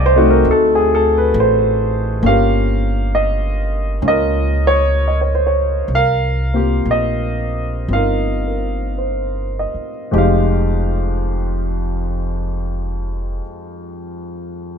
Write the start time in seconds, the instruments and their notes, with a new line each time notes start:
Already playing: upright bass C2, grand piano A3 C4 D#4 G4 D5 D#5 F5 G5 G#5 A5
0.06 grand piano C5
0.16 grand piano A3 C4 D#4 F#4
0.30 grand piano A#4
0.45 upright bass D2
0.51 grand piano A4
0.75 grand piano G#4
0.95 grand piano A4
1.18 grand piano B4
1.34 upright bass A1
1.40 grand piano C5
2.22 upright bass G1, grand piano A#3 C#4 F4
2.26 grand piano G4 A#4 F5
3.15 grand piano D#5
4.02 upright bass C#2, grand piano C#4 F4
4.08 grand piano A#4 D#5
4.67 grand piano C#5
5.08 grand piano D#5
5.21 grand piano C#5
5.35 grand piano C5
5.47 grand piano C#5
5.88 upright bass C2
5.95 grand piano A#4 F5
6.54 grand piano A#3 C4 F4 G4
6.85 upright bass A#1
6.91 grand piano D#5
7.88 upright bass G1, grand piano C4 D#4
7.93 grand piano F4 A#4 F5
8.47 grand piano A#4
8.98 grand piano C5
9.59 grand piano D#5
9.74 muted upright bass stroke
10.11 upright bass F1, grand piano F2 F3 G#3 D#4 G4
10.18 grand piano F5